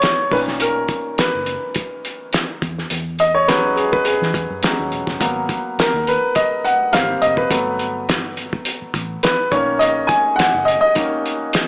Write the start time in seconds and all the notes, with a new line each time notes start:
Already playing: F#3 A3 B3 B4 C#5 D5
0.02 snare, closed hi-hat
0.32 B1 A#2 D#3 C#4 B4, kick, open hi-hat
0.48 snare
0.60 A#4, closed hi-hat
0.88 kick, closed hi-hat
1.18 B4, muted fingered electric bass stroke, snare, closed hi-hat
1.35 F#1
1.46 closed hi-hat
1.75 kick, closed hi-hat
2.05 closed hi-hat
2.33 snare, closed hi-hat
2.62 E2, kick, closed hi-hat
2.78 snare
2.90 E2, closed hi-hat
3.19 D#5, closed hi-hat
3.34 C#5
3.48 F#3 G#3 C#4 B4, snare, closed hi-hat
3.76 G#4, closed hi-hat
3.92 B4, kick
4.05 G#4, closed hi-hat
4.22 E3, snare
4.34 E2, kick, closed hi-hat
4.50 F#2
4.63 F#3 G#3 C#4, snare, closed hi-hat
4.79 D#2
4.92 E1, closed hi-hat
5.07 F#1, kick, snare
5.20 G#1 F#3 A#3 B3, kick, closed hi-hat
5.49 kick, closed hi-hat
5.78 A#4, muted fingered electric bass stroke, snare, closed hi-hat
5.94 D#2
6.07 B4, closed hi-hat
6.35 D#5, kick, closed hi-hat
6.64 F#5, closed hi-hat
6.92 G#1 G3 A#3 C4 F5, snare, closed hi-hat
7.22 F1 D#5, closed hi-hat
7.37 B4, kick
7.50 G1 F#3 A3 B3, kick, closed hi-hat
7.79 closed hi-hat
8.09 snare, closed hi-hat
8.37 closed hi-hat
8.53 kick
8.65 closed hi-hat
8.82 muted fingered electric bass stroke
8.94 A1, kick, closed hi-hat
9.23 B4, snare, closed hi-hat
9.51 B1 D#3 A#3 C#4 C#5, kick, closed hi-hat
9.79 D#5, closed hi-hat
10.07 G#5, kick, closed hi-hat
10.36 F#5, muted fingered electric bass stroke, snare, closed hi-hat
10.54 F#1
10.65 D#5, closed hi-hat
10.81 D#5
10.95 D#3 A#3 C#4, kick, closed hi-hat
11.26 closed hi-hat
11.53 snare, closed hi-hat